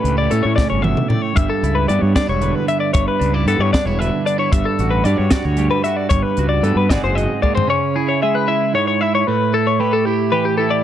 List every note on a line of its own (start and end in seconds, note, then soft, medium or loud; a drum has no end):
0.00 0.82 A2 medium
0.00 0.29 A3 medium
0.00 0.30 C#4 medium
0.00 0.17 D4 medium
0.00 2.42 G4 medium
0.00 0.18 B4 medium
0.04 0.27 C#2 medium
0.04 closed hi-hat medium
0.17 1.36 E4 soft
0.17 0.31 D5 medium
0.30 0.43 A2 medium
0.30 1.33 A3 medium
0.30 1.33 C#4 medium
0.30 0.44 A4 medium
0.30 closed hi-hat medium
0.43 0.56 A2 medium
0.43 0.55 C#5 medium
0.56 0.83 C#3 medium
0.56 0.69 D5 medium
0.56 kick medium
0.56 snare medium
0.70 0.94 G1 medium
0.70 0.82 C#5 medium
0.82 1.09 B2 medium
0.82 1.08 E5 medium
0.82 high tom medium
0.97 mid tom medium
1.08 1.35 A2 medium
1.08 1.22 D5 medium
1.08 mid tom medium
1.22 1.36 C#5 medium
1.35 1.48 G1 medium
1.35 2.94 G2 medium
1.35 1.49 E5 medium
1.35 kick loud
1.35 closed hi-hat medium
1.50 1.76 A4 medium
1.63 1.85 C#2 medium
1.63 2.16 E4 medium
1.63 closed hi-hat medium
1.75 1.88 B4 medium
1.88 2.01 G2 medium
1.88 3.47 G3 medium
1.88 3.49 B3 soft
1.88 2.01 D5 medium
1.88 closed hi-hat medium
2.01 2.13 G2 medium
2.01 2.15 C#5 medium
2.16 2.27 D4 medium
2.16 2.29 D5 medium
2.16 kick medium
2.16 snare loud
2.16 closed hi-hat medium
2.27 2.51 E1 medium
2.27 2.67 E4 soft
2.27 2.55 C#5 medium
2.42 2.91 D3 medium
2.42 4.00 B4 soft
2.42 closed hi-hat medium
2.55 2.68 B4 medium
2.68 3.19 E4 medium
2.68 2.80 E5 medium
2.68 closed hi-hat medium
2.80 2.93 D5 medium
2.93 3.06 G1 medium
2.93 4.52 G2 medium
2.93 3.07 C#5 medium
2.93 kick loud
2.93 closed hi-hat medium
3.08 3.34 B4 medium
3.19 3.43 C#2 medium
3.19 3.34 D4 medium
3.19 closed hi-hat medium
3.34 3.73 E4 soft
3.34 3.47 D5 medium
3.46 3.58 G2 medium
3.46 4.83 G3 medium
3.46 5.06 B3 medium
3.46 3.60 A4 medium
3.46 closed hi-hat medium
3.59 3.71 G2 medium
3.59 3.73 C#5 medium
3.73 3.87 D4 medium
3.73 3.86 D5 medium
3.73 kick medium
3.73 snare loud
3.73 closed hi-hat medium
3.86 4.09 E1 medium
3.86 4.25 E4 soft
3.86 3.99 C#5 medium
3.99 4.49 D3 medium
3.99 5.58 B4 soft
3.99 4.26 E5 medium
3.99 closed hi-hat medium
4.25 4.38 D4 medium
4.25 4.39 D5 medium
4.25 closed hi-hat medium
4.38 4.52 E4 soft
4.38 4.52 C#5 medium
4.52 4.64 G1 medium
4.52 5.57 G2 medium
4.52 4.65 E5 medium
4.52 kick loud
4.52 closed hi-hat medium
4.65 4.92 A4 medium
4.79 5.02 A1 medium
4.79 5.32 F#4 medium
4.79 closed hi-hat medium
4.91 5.04 B4 medium
5.04 5.16 G2 medium
5.04 6.08 G3 medium
5.04 6.08 D4 medium
5.04 5.18 D5 medium
5.04 closed hi-hat medium
5.18 5.30 G2 medium
5.18 5.31 C#5 medium
5.31 5.84 F#4 medium
5.31 5.45 D5 medium
5.31 kick medium
5.31 snare loud
5.31 closed hi-hat medium
5.45 5.68 D2 medium
5.45 5.70 C#5 medium
5.57 6.10 G2 medium
5.57 5.71 G4 medium
5.57 closed hi-hat medium
5.71 6.11 A4 soft
5.71 5.83 B4 medium
5.84 6.08 F#4 medium
5.84 5.97 E5 medium
5.84 closed hi-hat medium
5.97 6.09 D5 medium
6.09 6.22 G1 medium
6.09 6.90 G2 medium
6.09 6.23 C#5 medium
6.09 kick medium
6.09 closed hi-hat medium
6.23 6.48 B4 medium
6.37 6.60 C#2 medium
6.37 6.88 F#4 medium
6.37 closed hi-hat medium
6.49 6.63 D5 medium
6.63 6.75 G2 medium
6.63 6.87 G3 medium
6.63 6.87 B3 soft
6.63 6.76 A4 medium
6.63 closed hi-hat medium
6.76 6.87 G2 medium
6.76 6.90 B4 medium
6.90 7.01 G#1 medium
6.90 7.66 G#2 medium
6.90 7.42 G#3 medium
6.90 7.43 C4 medium
6.90 7.16 F#4 medium
6.90 7.67 G#4 medium
6.90 7.03 D5 medium
6.90 kick medium
6.90 snare loud
6.90 closed hi-hat medium
7.03 7.25 F#1 medium
7.03 7.15 C5 medium
7.15 7.66 F#4 medium
7.15 7.42 D#5 medium
7.15 closed hi-hat medium
7.42 7.66 G#3 medium
7.42 7.55 A#3 soft
7.42 7.55 D5 medium
7.42 kick medium
7.55 7.68 C4 soft
7.55 7.68 C5 medium
7.55 floor tom medium
7.67 8.73 C#3 medium
7.67 7.96 C#5 medium
7.96 8.48 E4 medium
7.96 8.08 G#4 medium
8.09 8.21 C#5 medium
8.22 9.24 G#3 medium
8.22 8.75 G#4 medium
8.22 8.35 E5 medium
8.35 8.48 B4 medium
8.48 9.01 E4 medium
8.48 8.74 E5 medium
8.74 9.23 G#2 medium
8.74 8.86 C#5 medium
8.74 9.24 C#5 medium
8.87 9.01 C#5 medium
9.01 9.24 E4 medium
9.01 9.14 E5 medium
9.15 9.27 C#5 medium
9.27 10.82 A2 medium
9.27 9.53 B4 medium
9.54 10.06 E4 medium
9.54 9.66 A4 medium
9.67 9.80 C#5 medium
9.80 10.84 A3 medium
9.80 10.32 G4 medium
9.80 9.93 B4 medium
9.93 10.05 A4 medium
10.05 10.58 E4 medium
10.05 10.32 G4 medium
10.32 10.81 E3 medium
10.32 10.84 G4 medium
10.32 10.45 B4 medium
10.45 10.57 G4 medium
10.58 10.82 E4 medium
10.58 10.71 A4 medium
10.71 10.83 D5 medium